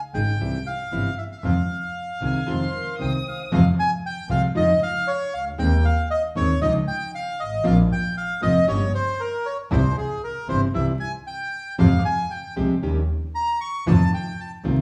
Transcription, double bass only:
0.14 G#1
0.40 C2
0.92 G1
1.43 F2
2.21 C2
2.48 F2
3.00 C2
3.52 F2
4.29 C2
4.55 F2
5.33 C#2
5.58 D#2
6.36 D#2
6.61 C#2
7.38 G#1
7.65 A#1
8.42 F1
8.68 G1
9.71 C2
10.48 G1
10.74 C2
11.79 F2
12.57 C2
12.82 D#2
13.87 F2
14.64 C2

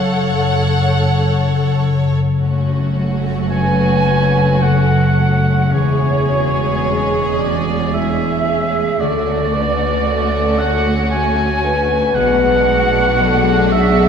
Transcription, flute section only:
3.51 G#5
4.61 F#5
5.72 C#5
7.39 D5
7.92 E5
9.00 D5
10.60 F#5
11.12 G#5
12.17 F#5
13.71 E5

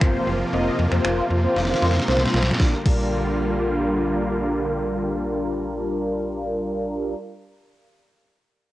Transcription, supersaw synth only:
Already playing: C3 F3 A#3 F4
2.60 D3 G3 A#3 F4

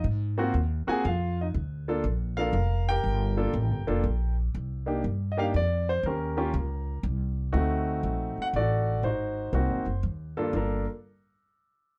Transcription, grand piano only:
0.38 A#3 C4 F4 F#4
0.87 A#3 C4 F4 F#4 G#5
0.92 G#4
1.05 F4 F5
1.41 D#4 D#5
1.88 A#3 D4 F4 A4
2.37 A#3 D4 F4 A4 A#4 F5
2.89 G4 A#4 G5
3.37 A#3 D4 F4 A4
3.87 A#3 D4 F4 A4
4.86 A#3 D4 D#4 G4
5.32 D#5
5.37 A#3 D4 D#4 G4 F5
5.56 D5
5.89 C5
6.06 C#4 G4 A#4
6.37 A#3 C#4 F4 G4
7.52 A3 C4 D#4 F#4
8.42 F#5
8.56 F#4 A4 D5
9.04 D#4 F#4 C5
9.53 A#3 C4 D#4 F#4
10.37 G2 A#3 D4 F4 A4
10.54 A#3 D4 F4 A4 A#4

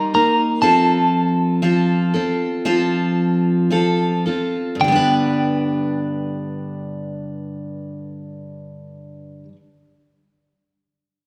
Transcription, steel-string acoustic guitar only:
Already playing: G3 A#3 D#4 A#4
0.14 A#3 D#4 A#4
0.62 F3 C4 F4 A4
1.62 F3 C4 F4 A4
2.14 C4 F4 A4
2.65 F3 C4 F4 A4
3.70 F3 C4 F4 A4
4.26 C4 F4 A4
4.75 G2
4.80 D3 G3
4.88 B3
4.92 D4 B4

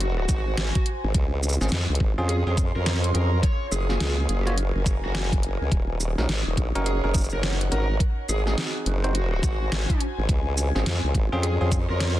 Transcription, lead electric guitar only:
0.00 F#4
0.18 F#4
0.29 F#4
2.29 G#4
2.76 A#4
3.14 A#4
3.43 C#5
3.72 G#4
5.04 F#4
5.15 F#4
6.86 G#4
7.33 A#4
7.72 A#4
8.29 G#4
8.47 G#4
9.15 F#4
9.33 F#4
9.44 F#4
11.43 G#4
11.90 A#4

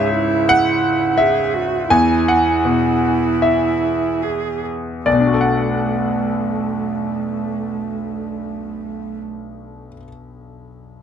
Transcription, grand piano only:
Already playing: C#2 G#2 C#5 E5
0.49 F#5
1.18 E5
1.90 E2 G#5
2.28 F#5
2.65 B2
3.42 E5
5.06 B1 D5
5.13 B2
5.20 D4
5.27 F#4
5.34 A4
5.41 F#5

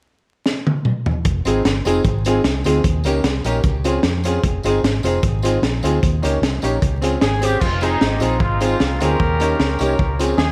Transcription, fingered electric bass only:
1.25 F1
1.46 G#1
1.65 G1
1.86 F1
2.04 G#1
2.44 C2
2.65 D2
2.84 D#2
3.05 C#2
3.24 C2
3.45 A#1
3.64 C#2
4.04 F2
4.43 F1
4.64 G1
4.83 G#1
5.04 F1
5.23 G#1
5.62 A#1
5.83 D2
6.03 D#2
6.23 C#2
6.42 C2
6.63 A#1
6.82 C#2
7.22 G#1
7.62 F1
8.01 G#1
8.22 A#1
8.40 G#1
8.81 C2
9.02 D2
9.20 D#2
9.59 C#2
9.80 C2
9.99 C#2
10.38 D#2

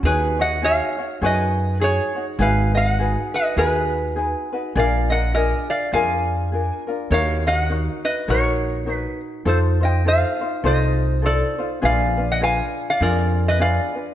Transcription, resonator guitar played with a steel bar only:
0.05 G#4 B4
0.41 D#5 F#5
0.64 C#5 F5
1.24 B4 D#5
1.81 G#4 C#5
2.41 B4 F5
2.75 D#5 F5
2.88 F#5
3.34 B4 D#5
3.58 G#4 B4
4.77 D5 F5
5.10 D#5 F#5
5.34 A#4 D#5
5.70 D5 F5
5.93 F5 G#5
7.12 C#5 F5
7.47 D#5 F5
7.59 F#5
8.05 B4 D#5
8.30 A#4 C#5
8.94 B4
9.47 A4 C5
9.83 D#5 G5
10.08 C5 F5
10.66 C5 D#5
11.26 A4 D5
11.85 D5 F5
12.32 D#5 F#5
12.43 F5 G#5
12.90 D5 F5
13.02 A#4 D5
13.48 B4 D#5
13.61 D5 F5

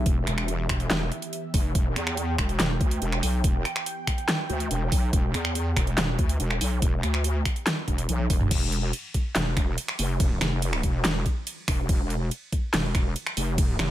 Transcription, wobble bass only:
0.06 E1
0.27 E1
0.69 E1
0.90 E1
1.54 F1
1.75 E1
1.96 E2
2.38 E1
2.59 E1
2.81 D2
3.02 E1
3.23 B1
3.44 E1
4.50 D2
4.71 E1
4.92 B1
5.13 E1
5.34 E2
5.76 E1
5.98 E1
6.19 D2
6.40 E1
6.61 B1
6.82 E1
7.03 D2
7.88 E1
8.09 B1
8.30 E1
8.51 E1
9.35 E1
9.57 E1
9.99 F1
10.41 F1
10.83 E1
11.05 E1
11.68 E1
11.89 E1
12.73 E1
12.95 E1
13.37 F1
13.79 F1

